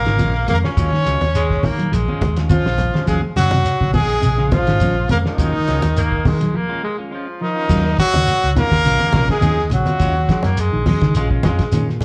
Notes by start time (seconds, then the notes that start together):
Already playing: A#3 A#4
0.06 G#1 D#3 C#4 F4, snare, closed hi-hat
0.19 A#1 F3 G#3 C#4 F4, kick, closed hi-hat, high conga, shekere
0.34 muted clean electric guitar stroke
0.48 F2 G#3 A#3, muted clean electric guitar stroke, closed hi-hat, high conga, low conga, shekere
0.53 A#4
0.63 C#4 F4 C#5, snare
0.76 D#2 F#3 G#3 C#4 F4, kick, closed hi-hat, shekere
0.92 D#3, muted clean electric guitar stroke, snare
1.06 C#2 F#3 G#3 C#4 F4, snare, closed hi-hat, shekere
1.21 D#2, muted clean electric guitar stroke, snare, closed hi-hat, high conga
1.35 G#3, closed hi-hat, shekere
1.50 muted clean electric guitar stroke, kick, snare
1.63 D#3 A#3, kick, open hi-hat, high conga, low conga, shekere
1.79 F#3, muted clean electric guitar stroke, closed hi-hat
1.92 A#1 F3 G#3, muted clean electric guitar stroke, closed hi-hat, shekere
2.08 F3 G#3 C#4 F4, high conga
2.21 D#2 G#3, muted clean electric guitar stroke, kick, snare, closed hi-hat, high conga, shekere
2.37 G#3 C#4 F4, snare, closed hi-hat
2.49 F3 G#3 C#4 F4, kick, closed hi-hat, high conga, shekere
2.65 A#1, muted clean electric guitar stroke, snare
2.78 F3, muted clean electric guitar stroke, closed hi-hat, low conga, shekere
2.94 G#3 C#4 F4, snare, high conga
3.06 D#2 F3 F#3 G#3 C#4 F4 G#4, muted clean electric guitar stroke, kick, closed hi-hat, shekere
3.22 muted clean electric guitar stroke, muted fingered electric bass stroke
3.36 F#2 C#3 F#3 G#3 C#4 F#4, snare, closed hi-hat, low conga, shekere
3.51 C3, muted clean electric guitar stroke, closed hi-hat, high conga
3.65 closed hi-hat, shekere
3.80 A#1 C#3, muted clean electric guitar stroke, kick, snare
3.93 G#3 G#4, kick, open hi-hat, high conga, low conga, shekere
4.10 muted clean electric guitar stroke
4.22 A#1 C3, muted clean electric guitar stroke, closed hi-hat, shekere
4.38 C#3 F3 G#3 C#4 F4
4.51 A#1 F3 F4, muted clean electric guitar stroke, kick, snare, closed hi-hat, high conga, low conga, shekere
4.67 G#1 D#3 G#3 C#4 F4, snare, closed hi-hat
4.80 A#1 F3 G#3 C#4 F4, kick, closed hi-hat, high conga, shekere
4.96 muted clean electric guitar stroke
5.09 F2 G#3 A#3 A#4, muted clean electric guitar stroke, closed hi-hat, high conga, low conga, shekere
5.25 D#3 G#3 C#4 D#4 F4, snare
5.38 D#2 F#3 G#3 C#4 F4, kick, closed hi-hat, shekere
5.54 D#3, muted clean electric guitar stroke
5.67 C#2 F#3 G#3 C#4 F4, snare, closed hi-hat, shekere
5.82 D#2, muted clean electric guitar stroke, snare, closed hi-hat, high conga
5.96 A#3, closed hi-hat, shekere
6.12 muted clean electric guitar stroke, kick
6.25 D#3 G#3, kick, open hi-hat, high conga, low conga, shekere
6.41 F#3, muted clean electric guitar stroke, snare, closed hi-hat
6.53 F3 A#3, muted clean electric guitar stroke
6.69 G#3 C#4 F4
6.83 G#3, muted clean electric guitar stroke
6.98 C#4 F4
7.11 F3 G#3 C#4 F4
7.27 muted clean electric guitar stroke
7.41 D#3 F3 D#4, muted clean electric guitar stroke
7.55 C#4 F4
7.69 D#2 F#3 G#3 C#4 F4, kick, crash, shekere
7.84 muted clean electric guitar stroke
7.98 F#3 F#4, muted clean electric guitar stroke, kick, snare, closed hi-hat, shekere
8.13 D#2 C#3, snare, closed hi-hat, high conga
8.27 muted clean electric guitar stroke, closed hi-hat, shekere
8.44 C#2, muted clean electric guitar stroke
8.55 D#3 F#3 G#3 A#3 C#4 F4 A#4, closed hi-hat, high conga, low conga, shekere
8.71 D#2, muted clean electric guitar stroke, kick, snare
8.85 A#1 C#3 G#3 C#4 F4, muted clean electric guitar stroke, snare, closed hi-hat, shekere
9.00 F3 G#3 C#4, muted fingered electric bass stroke, muted clean electric guitar stroke, high conga
9.13 A#1 C3 G#3 C#4 F4, muted clean electric guitar stroke, kick, snare, closed hi-hat, high conga, shekere
9.29 G#3 G#4, kick, snare, closed hi-hat
9.41 D#2 D#3 F3 G#3 C#4, closed hi-hat, high conga, shekere
9.59 muted clean electric guitar stroke, snare
9.70 A#1 C#3 F#3, muted clean electric guitar stroke, closed hi-hat, low conga, shekere
9.75 F#4
9.86 G#3 C#4 F4, muted fingered electric bass stroke, closed hi-hat, high conga
10.00 D#2 F#3 G#3 C#4 F4, kick, closed hi-hat, shekere
10.16 muted clean electric guitar stroke
10.28 F3 G#3, muted clean electric guitar stroke, kick, snare, closed hi-hat, shekere
10.43 F#2 A#3, muted clean electric guitar stroke, snare, closed hi-hat, high conga
10.57 G#3, muted clean electric guitar stroke, closed hi-hat, shekere
10.73 A#1 D#3, muted clean electric guitar stroke
10.86 F3 F#3 G#3 C#4, muted clean electric guitar stroke, open hi-hat, high conga, low conga, shekere
11.01 C#3 D#3, muted clean electric guitar stroke, kick, snare, closed hi-hat
11.15 A#1 G#3 C#4 F4, closed hi-hat, shekere
11.31 G#3 C#4 F4, kick
11.43 F2 F3 G#3 C#4 F4, kick, snare, closed hi-hat, high conga, low conga, shekere
11.59 kick, snare, closed hi-hat
11.72 A#2 D#3 G#3 C#4, snare, closed hi-hat, high conga, shekere
11.89 muted clean electric guitar stroke, snare
12.01 muted clean electric guitar stroke, closed hi-hat, low conga, shekere